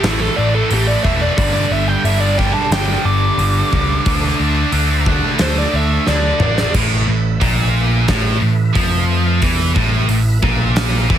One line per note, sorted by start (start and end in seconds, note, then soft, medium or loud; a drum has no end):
0.00 0.26 A1 medium
0.00 0.69 A2 medium
0.00 0.70 E3 loud
0.00 1.34 A3 medium
0.00 0.70 A3 loud
0.00 1.34 E4 medium
0.00 1.34 B4 medium
0.00 open hi-hat medium
0.04 0.21 E4 medium
0.04 snare loud
0.21 0.37 A4 loud
0.36 0.60 A1 medium
0.36 0.53 D5 loud
0.54 0.71 A4 loud
0.70 0.94 A1 loud
0.70 1.03 A2 medium
0.70 1.03 E3 medium
0.70 1.04 A3 medium
0.70 0.89 G4 loud
0.70 open hi-hat medium
0.87 1.04 D5 loud
1.03 1.27 E1 medium
1.03 1.36 A2 medium
1.03 1.36 E3 medium
1.03 1.36 A3 medium
1.03 1.20 E5 loud
1.03 kick medium
1.21 1.37 D5 loud
1.37 1.61 G1 medium
1.37 2.03 G2 loud
1.37 2.03 D3 loud
1.37 2.05 G3 loud
1.37 4.04 G3 medium
1.37 6.70 D4 medium
1.37 6.70 A4 medium
1.37 1.52 D5 loud
1.37 kick loud
1.37 open hi-hat medium
1.53 1.70 D5 loud
1.71 1.94 G1 medium
1.71 1.88 E5 loud
1.88 2.05 G5 medium
2.04 2.49 G1 medium
2.04 2.37 G2 medium
2.04 2.37 D3 loud
2.04 2.39 G3 loud
2.04 2.20 E5 loud
2.04 open hi-hat medium
2.20 2.37 D5 loud
2.38 2.70 G2 medium
2.38 2.70 D3 medium
2.38 2.71 G3 medium
2.38 2.53 G5 loud
2.38 kick medium
2.38 snare soft
2.54 2.71 A5 loud
2.71 2.94 G1 loud
2.71 3.38 G2 loud
2.71 3.38 D3 loud
2.71 3.39 G3 loud
2.71 3.05 G5 loud
2.71 snare loud
2.71 open hi-hat medium
3.05 3.28 G1 medium
3.05 5.03 D6 loud
3.37 3.60 G1 loud
3.37 3.71 G2 medium
3.37 3.72 D3 medium
3.37 3.72 G3 loud
3.37 open hi-hat medium
3.72 3.95 C#2 medium
3.72 4.04 G2 medium
3.72 4.04 D3 medium
3.72 4.05 G3 loud
3.72 kick medium
4.04 4.29 D2 loud
4.04 4.72 D3 loud
4.04 4.72 A3 loud
4.04 4.73 D4 loud
4.04 6.70 E5 medium
4.04 kick loud
4.04 open hi-hat medium
4.40 4.62 D2 medium
4.72 5.18 D2 medium
4.72 5.07 D3 medium
4.72 5.07 A3 medium
4.72 5.07 D4 loud
4.72 open hi-hat medium
5.06 5.40 D3 medium
5.06 5.40 A3 medium
5.06 5.41 D4 medium
5.06 kick medium
5.39 5.62 D2 loud
5.39 6.07 D3 loud
5.39 6.07 A3 loud
5.39 6.07 D4 loud
5.39 5.57 C5 loud
5.39 snare loud
5.39 open hi-hat medium
5.58 5.76 D5 medium
5.73 5.96 D2 medium
5.73 6.07 E5 medium
6.07 6.30 D2 loud
6.07 6.40 D3 medium
6.07 6.41 A3 medium
6.07 6.41 D4 medium
6.07 6.73 D5 loud
6.07 snare medium
6.40 6.63 A1 medium
6.40 6.73 D3 loud
6.40 6.73 A3 loud
6.40 6.73 D4 loud
6.40 mid tom loud
6.58 snare medium
6.74 7.06 A1 medium
6.74 7.06 A2 loud
6.74 11.18 A3 medium
6.74 11.18 B4 medium
6.74 11.18 E5 medium
6.74 kick loud
6.74 crash loud
7.07 7.39 A1 medium
7.07 7.34 A2 medium
7.41 8.04 A#1 medium
7.41 8.07 A#2 loud
7.41 kick loud
7.41 open hi-hat medium
8.08 8.39 A1 medium
8.08 8.41 A2 loud
8.08 kick loud
8.08 snare loud
8.08 open hi-hat medium
8.42 8.73 A1 medium
8.42 8.69 A2 medium
8.75 9.38 F2 loud
8.75 9.42 F3 loud
8.75 kick loud
8.75 open hi-hat medium
9.42 9.73 E2 loud
9.42 9.75 E3 loud
9.42 kick loud
9.42 open hi-hat medium
9.75 10.07 A1 medium
9.75 10.08 A2 loud
9.75 kick loud
10.08 10.40 A1 medium
10.08 10.37 A2 medium
10.08 open hi-hat medium
10.42 11.06 A#1 medium
10.42 11.09 A#2 medium
10.42 kick loud
10.76 snare loud
10.76 open hi-hat medium
11.10 11.18 E2 medium
11.10 11.18 E3 loud
11.10 kick loud